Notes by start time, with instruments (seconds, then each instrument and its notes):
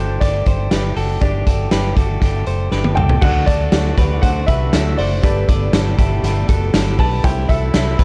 Already playing: fingered electric bass G1, clean electric guitar D4 F#4 G4 A4, upright piano C5
0.00 clean electric guitar A3
0.20 fingered electric bass G1, clean electric guitar G3 A3 D4 G4 A4 D5, upright piano D5, kick, snare, closed hi-hat
0.46 fingered electric bass G1, clean electric guitar A3 D4 G4 A4 C5, kick, closed hi-hat
0.70 fingered electric bass G1, clean electric guitar G3 A3 D4 G4 B4, snare, closed hi-hat
0.95 fingered electric bass F#1, clean electric guitar A3 D4 F#4 G4 A4, open hi-hat
1.20 fingered electric bass G1, clean electric guitar G3 A3 D4 G4, upright piano D5, kick, closed hi-hat
1.44 fingered electric bass G1, clean electric guitar A3 D4 F#4 G4 A4, kick, closed hi-hat
1.70 fingered electric bass G1, clean electric guitar G3 A3 D4 G4 B4, snare, closed hi-hat
1.95 fingered electric bass G1, clean electric guitar A3 D4 F#4 G4 A4, kick, closed hi-hat
2.20 fingered electric bass G1, clean electric guitar G3 A3 D4 G4, kick, snare, closed hi-hat
2.45 fingered electric bass F#1, clean electric guitar A3 D4 G4 A4 C5, closed hi-hat
2.70 fingered electric bass G1, clean electric guitar G3 A3 D4 G4 B4, snare
2.84 high tom
2.95 fingered electric bass C2, clean electric guitar D4 F#4 G4 A4, upright piano G5, mid tom
2.99 clean electric guitar A3
3.09 floor tom
3.21 fingered electric bass D2, clean electric guitar D3 F#3 A3 D4 F#4, string section D3 A3 F#4, upright piano F#4 A4 D5 F#5, kick, crash
3.46 fingered electric bass D2, clean electric guitar A3 D4 F#4 A4, upright piano D5, kick, closed hi-hat
3.71 fingered electric bass D2, clean electric guitar F#3 A3 D4 F#4, snare, closed hi-hat
3.97 fingered electric bass D2, clean electric guitar A3 D4 F#4 G4 B4, kick, closed hi-hat
4.21 fingered electric bass D2, clean electric guitar D3 F#3 A3 D4 F#4 A4 C5, upright piano F#5, kick, closed hi-hat
4.46 fingered electric bass C2, clean electric guitar A3 D4 F#4 G4 B4, upright piano E5, kick, closed hi-hat
4.71 fingered electric bass D2, clean electric guitar F#3 A3 D4 F#4 A4, snare, closed hi-hat
4.97 fingered electric bass F#1, clean electric guitar A3 D4 F#4 A4 C5, upright piano D5, open hi-hat
5.22 fingered electric bass G1, string section B2 G3, clean electric guitar G3 B3 D4 G4 A4 B4, upright piano G4 A4 B4 D5, kick, closed hi-hat
5.48 fingered electric bass G1, clean electric guitar B3 D4 A4 B4 D5, kick, closed hi-hat
5.72 fingered electric bass G1, clean electric guitar G3 B3 D4 A4, snare, closed hi-hat
5.97 fingered electric bass G1, clean electric guitar B3 D4 E4 G4 A4, kick, closed hi-hat
6.23 fingered electric bass G1, clean electric guitar G3 B3 D4 A4, snare, closed hi-hat
6.47 fingered electric bass F#1, clean electric guitar B3 F#4 A4, kick, closed hi-hat
6.74 fingered electric bass G1, clean electric guitar G3 B3 D4 A4, snare, closed hi-hat
6.98 fingered electric bass B1, clean electric guitar B3 D4 G4 A4 B4, upright piano A5, kick, open hi-hat
7.23 fingered electric bass C2, clean electric guitar C3 E3 G3 E4 G4 A4, string section C3 A3 E4, upright piano E4 A4 C5 G5, kick, closed hi-hat
7.48 fingered electric bass C2, clean electric guitar G3 E4 F#4 A4, upright piano E5, kick, closed hi-hat
7.73 fingered electric bass C2, clean electric guitar E3 G3 E4 A4, snare, closed hi-hat
7.98 fingered electric bass C2, clean electric guitar E4 G4 A4 B4, kick, closed hi-hat